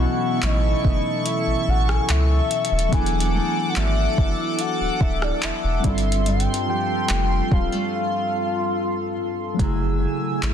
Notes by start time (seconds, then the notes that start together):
Already playing: B2 F#3 B3 C#4 E4 A4 C#6
0.01 E3 F#5
0.42 A1 E3 A3 C#4 D#5, clap, closed hi-hat
0.84 F#1 A3, kick
1.26 E5, closed hi-hat
1.47 A1
1.68 A1 F#5
1.89 G#5, cross-stick
2.09 C#2 E5, clap, closed hi-hat
2.51 closed hi-hat
2.65 closed hi-hat
2.72 D#1
2.79 closed hi-hat
2.89 F#3 B3 F#5 D6, kick
2.93 E1 E3 D4 E4 G#5, closed hi-hat
2.98 A4
3.06 closed hi-hat
3.20 closed hi-hat
3.34 A3 G#5
3.69 F#5
3.76 G#1 A3 D4 F#4 E5, clap, closed hi-hat
4.17 F#1 D4, kick
4.59 F#5, closed hi-hat
4.81 D1
5.01 D1 E5, kick
5.22 D5, cross-stick
5.42 E1 E5, clap, closed hi-hat
5.64 E1
5.80 G3 C4
5.84 G1 G2 D4 F4 C6, kick, closed hi-hat
5.90 A4
5.98 closed hi-hat
6.12 closed hi-hat
6.26 G2 G5, closed hi-hat
6.40 closed hi-hat
6.54 closed hi-hat
6.68 F3 G5
7.09 F1 F3 A3 C4, clap, closed hi-hat
7.51 D1 G3 F5, kick
7.72 A3
7.95 F5
9.54 F#3 A3
9.59 F#1 C#3 F#3 A3 E4 G#4 G#5 E6, kick, closed hi-hat
9.64 G#4
10.01 A3
10.42 A1 E4, clap, closed hi-hat